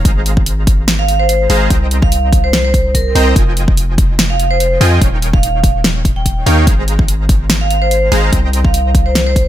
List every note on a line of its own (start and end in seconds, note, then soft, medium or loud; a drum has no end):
0.05 1.48 G#1 medium
0.05 1.48 G#3 medium
0.05 1.48 G#4 medium
0.05 1.48 C5 medium
0.05 1.48 F5 medium
0.05 1.48 A#5 medium
0.05 kick loud
0.05 closed hi-hat medium
0.26 closed hi-hat medium
0.37 kick loud
0.46 closed hi-hat medium
0.67 kick loud
0.67 closed hi-hat medium
0.88 snare loud
0.88 closed hi-hat medium
0.99 1.05 F5 medium
1.08 1.16 F5 medium
1.08 closed hi-hat medium
1.20 1.26 C5 medium
1.29 1.36 C5 medium
1.29 closed hi-hat medium
1.50 1.69 G#1 medium
1.50 1.68 G#3 loud
1.50 1.68 G#4 medium
1.50 1.68 C5 medium
1.50 1.68 F5 medium
1.50 1.68 A#5 loud
1.50 open hi-hat loud
1.70 3.13 C2 loud
1.70 3.13 C4 medium
1.70 3.13 C5 medium
1.70 3.13 D#5 medium
1.70 3.13 G5 medium
1.70 3.13 A#5 medium
1.70 kick loud
1.70 closed hi-hat medium
1.91 closed hi-hat medium
2.02 2.41 F5 medium
2.02 kick loud
2.12 closed hi-hat medium
2.33 kick loud
2.33 closed hi-hat medium
2.44 2.58 C5 medium
2.53 snare loud
2.53 closed hi-hat medium
2.65 2.93 C5 medium
2.74 kick loud
2.74 closed hi-hat medium
2.95 3.36 A#4 medium
2.95 kick medium
2.95 closed hi-hat medium
3.15 3.34 C2 loud
3.15 3.34 C4 medium
3.15 3.34 C5 medium
3.15 3.34 D#5 medium
3.15 3.34 G5 medium
3.15 3.34 A#5 loud
3.15 open hi-hat medium
3.36 4.79 F1 loud
3.36 4.79 F3 medium
3.36 4.79 F4 medium
3.36 4.79 D#5 medium
3.36 4.79 G5 medium
3.36 4.79 G#5 medium
3.36 kick loud
3.36 closed hi-hat medium
3.57 closed hi-hat medium
3.68 kick loud
3.77 closed hi-hat medium
3.98 kick loud
3.98 closed hi-hat medium
4.19 snare loud
4.19 closed hi-hat medium
4.30 4.36 F5 medium
4.40 4.47 F5 medium
4.40 closed hi-hat medium
4.51 4.57 C5 medium
4.60 4.67 C5 medium
4.60 closed hi-hat medium
4.81 5.00 F2 loud
4.81 4.99 F3 loud
4.81 4.99 F4 medium
4.81 4.99 D#5 medium
4.81 4.99 G5 medium
4.81 4.99 G#5 loud
4.81 open hi-hat medium
5.01 6.44 D#1 loud
5.01 6.44 D#3 medium
5.01 6.44 D#4 medium
5.01 6.44 C#5 medium
5.01 6.44 F5 medium
5.01 6.44 G5 medium
5.01 kick loud
5.01 closed hi-hat medium
5.22 closed hi-hat medium
5.33 5.73 F5 medium
5.33 kick loud
5.43 closed hi-hat medium
5.64 kick loud
5.64 closed hi-hat medium
5.84 snare loud
5.84 closed hi-hat medium
6.05 kick loud
6.05 closed hi-hat medium
6.16 6.22 G5 medium
6.26 6.33 G5 medium
6.26 kick medium
6.26 closed hi-hat medium
6.46 6.69 D#2 loud
6.46 6.65 D#3 medium
6.46 6.65 D#4 medium
6.46 6.65 C#5 medium
6.46 6.65 F5 medium
6.46 6.65 G5 loud
6.46 open hi-hat medium
6.67 8.10 G#1 medium
6.67 8.10 G#3 medium
6.67 8.10 G#4 medium
6.67 8.10 C5 medium
6.67 8.10 A#5 medium
6.67 kick loud
6.67 closed hi-hat medium
6.88 closed hi-hat medium
6.99 kick loud
7.08 closed hi-hat medium
7.29 kick loud
7.29 closed hi-hat medium
7.50 snare loud
7.50 closed hi-hat medium
7.61 7.67 F5 medium
7.70 7.78 F5 medium
7.70 closed hi-hat medium
7.82 7.88 C5 medium
7.91 7.98 C5 medium
7.91 closed hi-hat medium
8.12 8.31 G#1 loud
8.12 8.30 G#3 medium
8.12 8.30 G#4 medium
8.12 8.30 C5 medium
8.12 8.30 F5 medium
8.12 8.30 A#5 loud
8.12 open hi-hat medium
8.33 9.48 C2 loud
8.33 9.48 C4 medium
8.33 9.48 G5 medium
8.33 9.48 A#5 medium
8.33 kick loud
8.33 closed hi-hat medium
8.53 closed hi-hat medium
8.65 9.04 F5 medium
8.65 kick loud
8.74 closed hi-hat medium
8.95 kick loud
8.95 closed hi-hat medium
9.06 9.20 C5 medium
9.15 snare loud
9.15 closed hi-hat medium
9.27 9.48 C5 medium
9.36 kick loud
9.36 closed hi-hat medium